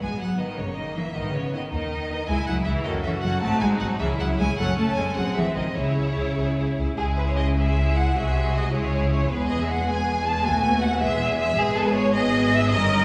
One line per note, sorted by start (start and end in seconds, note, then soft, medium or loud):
0.01 0.47 G#1 soft
0.01 0.21 G#3 medium
0.01 0.58 B3 soft
0.01 0.20 G#5 medium
0.21 0.40 F#3 medium
0.21 0.40 F#5 medium
0.39 0.59 D#3 medium
0.39 0.54 D#4 soft
0.39 0.54 B4 soft
0.39 0.59 D#5 soft
0.58 1.04 G1 medium
0.58 0.78 C#3 medium
0.58 1.16 A#3 soft
0.58 0.78 C#5 soft
0.76 0.96 D#3 medium
0.76 0.96 D#5 soft
0.96 1.04 E3 medium
0.96 1.11 D#4 soft
0.96 1.11 A#4 soft
0.96 1.16 E5 medium
1.14 1.61 G#1 medium
1.14 1.34 D#3 medium
1.14 1.73 B3 medium
1.14 1.34 D#5 medium
1.34 1.53 C#3 medium
1.34 1.54 C#5 soft
1.54 1.71 D#3 medium
1.54 1.68 D#4 soft
1.54 1.68 B4 soft
1.54 1.62 D#5 medium
1.73 2.17 D#2 medium
1.73 2.28 D#3 medium
1.73 2.29 D#4 medium
1.73 2.28 D#5 medium
2.10 2.25 D#4 soft
2.10 2.24 B4 medium
2.28 2.36 C#2 medium
2.28 2.37 G#3 medium
2.28 2.84 E4 medium
2.28 2.47 E4 soft
2.28 2.47 G#4 medium
2.28 2.47 G#5 medium
2.47 2.55 C#2 medium
2.47 2.66 F#3 medium
2.47 2.65 E4 soft
2.47 2.65 G#4 soft
2.47 2.55 F#5 medium
2.65 2.74 C#2 soft
2.65 2.85 E3 medium
2.65 2.85 E4 soft
2.65 2.85 G#4 soft
2.65 2.73 E5 medium
2.84 2.92 F#1 medium
2.84 3.05 D#3 medium
2.84 3.04 C#4 soft
2.84 3.42 F#4 medium
2.84 3.04 A4 soft
2.84 2.92 D#5 medium
3.04 3.12 F#1 soft
3.04 3.12 E3 medium
3.04 3.22 C#4 soft
3.04 3.22 A4 soft
3.04 3.11 E5 medium
3.21 3.31 F#1 medium
3.21 3.31 F#3 medium
3.21 3.42 C#4 soft
3.21 3.42 A4 soft
3.21 3.41 F#5 medium
3.41 3.50 G#1 medium
3.41 3.61 A3 medium
3.41 3.60 C4 medium
3.41 4.01 D#4 medium
3.41 3.60 F#4 medium
3.41 3.60 A5 medium
3.60 3.70 G#1 medium
3.60 3.81 G#3 medium
3.60 3.80 C4 soft
3.60 3.80 F#4 soft
3.60 3.68 G#5 medium
3.79 3.89 G#1 medium
3.79 4.00 F#3 medium
3.79 4.00 C4 soft
3.79 4.00 F#4 medium
3.79 3.87 F#5 medium
4.00 4.08 C#2 medium
4.00 4.08 E3 medium
4.00 4.19 C#4 soft
4.00 4.58 E4 medium
4.00 4.18 G#4 medium
4.00 4.07 E5 medium
4.20 4.27 C#2 medium
4.20 4.28 F#3 medium
4.20 4.38 C#4 soft
4.20 4.38 G#4 soft
4.20 4.27 F#5 medium
4.38 4.47 C#2 medium
4.38 4.47 G#3 medium
4.38 4.58 C#4 soft
4.38 4.58 G#4 medium
4.38 4.57 G#5 medium
4.58 4.66 F#1 medium
4.58 4.67 F#3 medium
4.58 4.76 C#4 medium
4.58 5.16 C#4 medium
4.58 4.76 A4 soft
4.58 4.77 F#5 medium
4.77 4.85 F#1 medium
4.77 4.96 A3 medium
4.77 4.95 C#4 soft
4.77 4.96 A4 soft
4.77 4.96 A5 medium
4.95 5.05 F#1 medium
4.95 5.05 G#3 medium
4.95 5.16 C#4 soft
4.95 5.16 A4 soft
4.95 5.16 G#5 medium
5.15 5.24 G#1 medium
5.15 5.24 F#3 medium
5.15 5.76 C4 medium
5.15 5.35 C4 medium
5.15 5.35 G#4 soft
5.15 5.36 F#5 medium
5.36 5.44 G#1 medium
5.36 5.45 E3 medium
5.36 5.55 C4 soft
5.36 5.55 G#4 soft
5.36 5.56 E5 medium
5.56 5.64 G#1 soft
5.56 5.65 D#3 medium
5.56 5.76 C4 soft
5.56 5.75 G#4 soft
5.56 5.76 D#5 medium
5.76 5.84 C#2 medium
5.76 6.76 C#3 medium
5.76 6.65 E4 medium
5.76 5.95 E4 soft
5.76 5.95 G#4 soft
5.76 6.77 C#5 medium
5.96 6.04 C#2 medium
5.96 6.14 E4 soft
5.96 6.14 G#4 soft
6.15 6.24 C#2 medium
6.15 6.35 E4 soft
6.15 6.36 G#4 soft
6.37 6.45 C#2 soft
6.37 6.55 E4 soft
6.37 6.55 G#4 soft
6.56 6.65 C#2 soft
6.56 6.76 E4 soft
6.56 6.75 G#4 soft
6.77 6.86 C#2 soft
6.77 6.96 E4 soft
6.77 6.97 G#4 soft
6.97 8.11 C#2 medium
6.97 8.11 C#3 medium
6.97 7.52 G#3 soft
6.97 7.52 E4 medium
6.97 7.52 G#4 medium
6.97 7.06 G#4 medium
7.18 7.22 B4 medium
7.29 7.33 C#5 medium
7.38 7.46 D#5 medium
7.56 8.12 G#3 soft
7.56 8.14 E4 soft
7.56 8.13 G#4 soft
7.56 7.96 E5 medium
7.96 8.15 F#5 medium
8.14 8.72 C2 medium
8.14 8.73 C3 medium
8.14 8.71 G#3 soft
8.14 8.72 F#4 medium
8.14 8.71 G#4 medium
8.14 8.53 E5 medium
8.55 8.73 D#5 medium
8.72 9.30 C#2 medium
8.72 9.30 C#3 medium
8.72 9.29 G#3 soft
8.72 9.30 E4 medium
8.72 9.29 G#4 medium
8.72 9.10 C#5 medium
9.11 9.30 C#5 medium
9.29 10.43 E1 medium
9.29 10.43 E2 medium
9.29 9.86 G#3 soft
9.29 9.85 B3 medium
9.29 9.87 G#4 medium
9.29 9.48 B4 medium
9.48 9.58 D#5 medium
9.60 9.69 E5 medium
9.67 9.87 F#5 medium
9.86 10.44 G#3 medium
9.86 10.43 B3 medium
9.86 10.44 G#4 medium
9.86 10.26 G#5 medium
10.25 10.44 A5 medium
10.43 11.02 D#2 medium
10.43 11.01 A3 medium
10.43 11.00 B3 medium
10.43 11.01 F#4 medium
10.43 10.82 G#5 medium
10.81 11.01 F#5 medium
11.00 11.58 E1 medium
11.00 11.58 E2 medium
11.00 11.56 G#3 medium
11.00 11.56 B3 medium
11.00 11.57 G#4 medium
11.00 11.37 E5 medium
11.38 11.57 E5 loud
11.56 12.70 G#1 medium
11.56 12.70 G#2 medium
11.56 12.14 G#3 medium
11.56 12.14 B3 medium
11.56 11.76 G#4 loud
11.56 12.14 G#4 medium
11.74 11.85 A4 medium
11.85 11.95 B4 medium
11.93 12.14 C#5 loud
12.12 12.72 G#3 medium
12.12 12.72 B3 medium
12.12 12.72 G#4 medium
12.12 12.52 D#5 loud
12.53 12.73 E5 loud
12.70 13.05 G1 medium
12.70 13.05 G2 medium
12.70 13.05 D#3 medium
12.70 13.05 C#4 medium
12.70 13.05 A#4 medium
12.70 13.05 D#5 loud